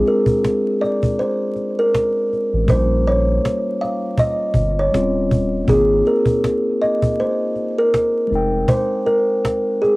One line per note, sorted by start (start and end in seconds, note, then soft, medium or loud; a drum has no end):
0.00 2.63 G#3 medium
0.00 2.64 C4 medium
0.00 2.65 D4 medium
0.00 2.70 F4 medium
0.06 0.77 A#4 medium
0.06 cajon slap soft
0.26 cajon bass loud
0.44 cajon slap loud
0.81 1.15 D5 medium
0.81 cajon slap soft
1.03 cajon bass medium
1.19 1.75 C5 medium
1.19 cajon slap soft
1.56 cajon slap soft
1.79 2.64 A#4 medium
1.95 cajon slap loud
2.33 cajon slap soft
2.53 2.67 A1 medium
2.65 3.39 A#1 loud
2.65 4.87 G3 medium
2.65 4.88 A#3 medium
2.65 cajon bass loud
2.70 4.90 C#4 medium
2.70 4.91 F4 medium
2.70 3.03 C5 loud
3.06 3.77 C#5 medium
3.06 cajon slap soft
3.45 cajon slap loud
3.81 4.15 F5 medium
3.81 cajon slap soft
4.18 4.75 D#5 medium
4.18 cajon bass loud
4.54 4.89 G1 medium
4.54 cajon bass loud
4.79 4.92 C#5 medium
4.92 5.64 D#1 loud
4.92 5.67 G3 medium
4.92 5.66 C4 medium
4.92 5.69 C#4 medium
4.92 cajon slap loud
4.96 5.69 F4 medium
5.31 cajon bass medium
5.65 6.02 G#1 loud
5.65 8.25 A#3 medium
5.65 8.26 C4 medium
5.65 cajon bass loud
5.69 8.28 D#4 medium
5.69 8.29 F4 medium
5.69 6.02 G#4 medium
6.06 6.77 A#4 medium
6.06 cajon slap soft
6.26 cajon bass medium
6.44 cajon slap loud
6.82 7.15 D#5 medium
6.82 cajon slap soft
7.02 cajon bass medium
7.20 7.75 C5 medium
7.20 cajon slap soft
7.56 cajon slap soft
7.78 8.64 A#4 medium
7.94 cajon slap loud
8.27 8.65 F1 loud
8.27 9.96 G#3 medium
8.27 9.96 C4 medium
8.33 9.96 D#4 medium
8.33 9.96 G5 medium
8.33 cajon slap soft
8.68 9.02 C5 loud
8.68 cajon bass loud
9.06 9.77 A#4 medium
9.06 cajon slap soft
9.45 cajon slap loud
9.82 9.96 G#4 medium
9.82 cajon slap soft